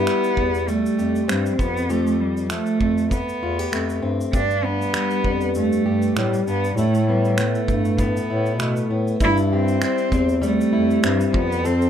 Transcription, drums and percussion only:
0.07 finger snap loud
0.07 shaker medium
0.24 shaker soft
0.37 kick medium
0.54 shaker soft
0.68 shaker medium
0.86 shaker medium
0.99 shaker soft
1.16 shaker soft
1.29 finger snap loud
1.29 shaker medium
1.46 shaker soft
1.59 kick medium
1.59 shaker soft
1.77 shaker soft
1.90 shaker medium
2.07 shaker soft
2.37 shaker soft
2.50 finger snap loud
2.50 shaker medium
2.66 shaker soft
2.81 kick medium
2.98 shaker soft
3.11 kick medium
3.11 shaker medium
3.29 shaker medium
3.59 shaker soft
3.73 finger snap loud
3.73 shaker medium
3.90 shaker soft
4.21 shaker soft
4.33 kick loud
4.33 shaker medium
4.50 shaker soft
4.82 shaker soft
4.94 finger snap loud
4.94 shaker medium
5.11 shaker soft
5.24 kick medium
5.41 shaker soft
5.55 shaker medium
5.72 shaker medium
6.02 shaker soft
6.16 finger snap loud
6.16 shaker medium
6.34 shaker medium
6.47 shaker soft
6.64 shaker medium
6.78 shaker medium
6.94 shaker soft
7.25 shaker soft
7.38 finger snap loud
7.38 shaker medium
7.55 shaker soft
7.68 kick medium
7.68 shaker soft
7.85 shaker soft
7.99 kick medium
7.99 shaker medium
8.17 shaker medium
8.46 shaker soft
8.60 finger snap loud
8.60 shaker medium
8.76 shaker medium
9.07 shaker medium
9.20 kick loud
9.20 shaker medium
9.37 shaker soft
9.68 shaker soft
9.82 finger snap loud
9.82 shaker medium
9.98 shaker soft
10.12 kick medium
10.12 shaker soft
10.29 shaker soft
10.43 shaker medium
10.61 shaker medium
10.90 shaker soft
11.03 finger snap loud
11.03 shaker medium
11.21 shaker medium
11.34 kick loud
11.52 shaker soft
11.65 shaker medium
11.82 shaker soft

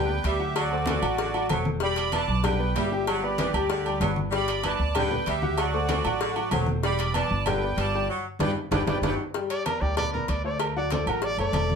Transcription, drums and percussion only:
0.08 high conga soft
0.24 cowbell medium
0.24 high conga soft
0.24 low agogo medium
0.55 cowbell loud
0.55 high conga soft
0.55 low agogo loud
0.70 high conga soft
0.86 cowbell medium
0.86 high conga loud
0.86 low agogo medium
1.03 low agogo loud
1.18 cowbell loud
1.18 high conga soft
1.33 high conga soft
1.33 low agogo medium
1.49 cowbell medium
1.49 high conga medium
1.49 low agogo loud
1.65 high conga loud
1.80 cowbell loud
1.80 high conga soft
1.96 cowbell medium
1.96 high conga soft
1.96 low agogo medium
2.12 cowbell medium
2.12 high conga medium
2.12 low agogo loud
2.28 high conga soft
2.44 cowbell loud
2.44 high conga soft
2.44 low conga medium
2.44 low agogo loud
2.60 high conga soft
2.76 cowbell medium
2.76 low timbale medium
2.76 low agogo medium
3.07 cowbell loud
3.07 high conga soft
3.07 low agogo loud
3.23 high conga soft
3.38 cowbell medium
3.38 high conga loud
3.38 low agogo medium
3.54 low agogo loud
3.70 cowbell loud
3.70 high conga soft
3.86 high conga soft
3.86 low agogo medium
4.01 cowbell medium
4.01 high conga medium
4.01 low timbale medium
4.01 low agogo medium
4.16 high conga medium
4.32 cowbell loud
4.32 high conga soft
4.48 cowbell medium
4.48 high conga soft
4.48 low agogo medium
4.63 cowbell medium
4.63 high conga medium
4.63 low agogo loud
4.79 high conga soft
4.95 cowbell loud
4.95 high conga soft
4.95 low conga medium
4.95 low agogo loud
5.11 high conga soft
5.11 low conga medium
5.26 cowbell medium
5.26 high conga soft
5.26 low agogo medium
5.42 high conga medium
5.57 cowbell loud
5.57 high conga soft
5.57 low agogo loud
5.73 high conga soft
5.89 cowbell medium
5.89 high conga loud
5.89 low agogo medium
6.05 low agogo loud
6.20 cowbell loud
6.20 high conga soft
6.36 high conga soft
6.36 low agogo medium
6.51 cowbell medium
6.51 high conga medium
6.51 low agogo loud
6.66 high conga medium
6.83 cowbell loud
6.83 high conga soft
6.98 cowbell medium
6.98 high conga soft
6.98 low agogo medium
7.14 cowbell medium
7.14 high conga medium
7.14 low agogo loud
7.29 high conga soft
7.46 cowbell loud
7.46 high conga soft
7.46 low conga medium
7.46 low agogo loud
7.61 high conga soft
7.78 cowbell medium
7.78 high conga soft
7.78 low agogo medium
8.40 cowbell loud
8.40 high conga loud
8.40 high timbale loud
8.72 cowbell loud
8.72 high conga loud
8.72 high timbale loud
8.87 cowbell loud
8.87 high conga loud
8.87 high timbale loud
9.03 cowbell loud
9.03 high conga loud
9.03 high timbale loud
9.34 cowbell loud
9.34 high conga soft
9.50 cowbell medium
9.50 high conga soft
9.50 low agogo medium
9.66 cowbell medium
9.66 high conga medium
9.66 low agogo loud
9.82 high conga soft
9.97 cowbell loud
9.97 high conga soft
9.97 low conga medium
9.97 low agogo loud
10.14 high conga soft
10.14 low conga medium
10.28 cowbell medium
10.28 high conga soft
10.28 low agogo medium
10.59 cowbell loud
10.59 high conga soft
10.59 low agogo loud
10.77 high conga soft
10.91 cowbell medium
10.91 high conga loud
10.91 low agogo medium
11.07 low agogo loud
11.22 cowbell loud
11.22 high conga soft
11.38 high conga soft
11.38 low agogo medium
11.53 cowbell medium
11.53 high conga medium
11.53 low agogo loud
11.70 high conga medium

